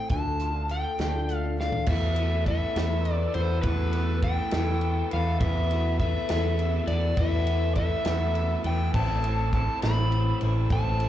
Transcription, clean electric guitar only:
Already playing: A3 C4 E4
0.12 D3
0.41 F4
0.71 A3
1.01 D4
1.29 A3
1.60 D4
1.89 E2 B2 E3 A3 B3 E4
2.19 E3 A3 B3 E4
2.48 E3 A3 B3 E4
2.78 E2 B2 E3 A3 B3 E4
3.37 E3 A3 B3 E4
3.65 E2 B2 E3 A3 B3 E4
3.95 E3 A3 B3 E4
4.25 E3 A3 B3 E4
4.54 E2 B2 E3 A3 B3 E4
5.13 E3 A3 B3 E4
5.41 E2 B2 E3 A3 B3 E4
5.72 E3 A3 B3 E4
6.01 E3 A3 B3 E4
6.30 E2 B2 E3 A3 B3 E4
6.89 E3 A3 B3 E4
7.19 E2 B2 E3 A3 B3 E4
7.48 E3 A3 B3 E4
7.77 E3 A3 B3 E4
8.06 E2 B2 E3 A3 B3 E4
8.66 E3 A3 B3 E4
8.96 A2 E3 A3 C4 E4
9.26 A3 C4 E4
9.55 E3 A3 C4 E4
9.84 A2 E3 A3 C4 E4
10.43 A3 C4 E4
10.72 A2 E3 A3 C4 E4
11.02 A3 C4 E4

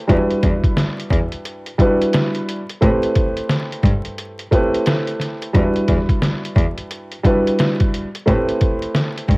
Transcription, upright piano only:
0.07 G3 D4 E4 F#4 B4
1.78 G3 D4 E4 F#4 B4
2.81 A3 C4 E4 G4 B4
4.51 A3 C4 E4 G4 B4
5.53 G3 D4 E4 F#4 B4
7.23 G3 D4 E4 F#4 B4
8.26 A3 C4 E4 G4 B4

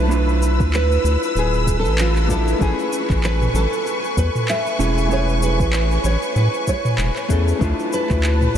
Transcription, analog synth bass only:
Already playing: B1
0.60 D2
1.04 D2
1.35 D1
1.85 A1
2.61 A1
3.10 A1
3.54 A1
4.17 E2
4.79 E1
5.60 A1
6.04 A1
6.36 A2
6.98 E1
7.30 E2
7.61 D2
8.10 D2
8.54 D2

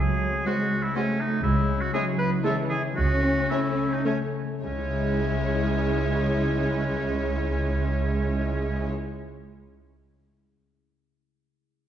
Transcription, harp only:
Already playing: C#3 F#4
0.14 G#3
0.30 C4
0.47 F#4
0.63 G#4
0.79 F#4
0.96 C4
1.12 G#3
1.28 C4
1.44 C#3
1.61 G#3
1.77 C#4
1.94 E4
2.11 G#4
2.28 E4
2.45 C#4
2.62 G#3
2.80 C#4
2.97 C#3
3.15 A3
3.32 C#4
3.50 A3
3.68 A4
3.87 C#4
4.06 A3
4.25 C#4
4.44 A3
4.64 C#3
4.71 C#4
4.78 E4
4.85 G#4
4.92 E5

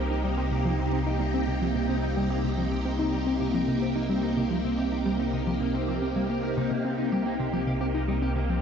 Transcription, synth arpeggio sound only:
0.10 D#4
0.24 G3
0.38 C4
0.51 C3
0.65 F3
0.79 C3
0.93 C4
1.06 D#4
1.20 G3
1.34 C4
1.48 C3
1.62 F3
1.75 C3
1.89 C4
2.03 D#4
2.17 G3
2.30 C4
2.44 C3
2.58 F3
2.72 C3
2.85 C4
2.99 D#4
3.13 G3
3.27 C4
3.40 C3
3.54 F3
3.68 C3
3.82 C4
3.96 D#4
4.09 G3
4.23 C4
4.37 C3
4.51 F3
4.64 C3
4.78 C4
4.92 D#4
5.06 G3
5.20 C4
5.33 C3
5.47 F3
5.61 C3
5.74 C4
5.88 F3
6.02 C4
6.16 G3
6.30 A#3
6.43 C4
6.57 C3
6.71 C3
6.85 C4
6.98 D#4
7.12 G3
7.26 C4
7.40 C3
7.53 F3
7.67 C3
7.81 C4
7.94 D#4
8.08 G3
8.22 C4
8.36 C3
8.50 F3

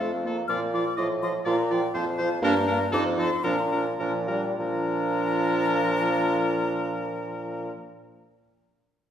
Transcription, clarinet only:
0.00 F4
0.25 F4
0.49 F4
0.73 F4
0.97 F4
1.22 F4
1.46 F4
1.70 F4
1.94 F4
2.18 F4
2.43 D4
2.68 D4
2.93 D#4
3.19 D#4
3.45 D4
3.73 D4
4.01 D4
4.30 D4
4.60 D4

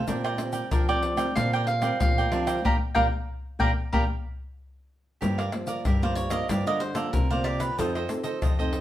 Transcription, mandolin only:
0.71 A#4
0.89 D5
1.36 F5
1.53 G5
1.67 F5
2.00 F5
2.65 F5 G5 A#5
2.95 F5 G5 A#5
3.60 F5 G5 A#5
3.93 F5 G5 A#5

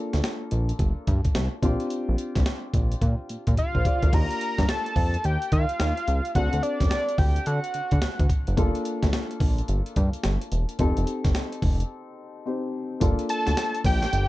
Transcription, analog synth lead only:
3.58 F5
4.14 A#5
4.69 A5
5.25 G5
5.53 F5
6.36 F#5
6.63 D5
6.90 D5
7.18 G5
7.46 F#5
13.30 A5
13.86 G5

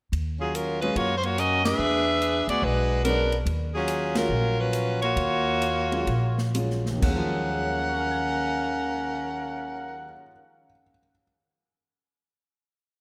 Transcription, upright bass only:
0.12 D#2
0.96 F#2
1.79 E2
2.48 D2
2.62 B1
3.45 D#2
4.29 A#1
5.16 D#2
6.07 A#1
7.02 D#2

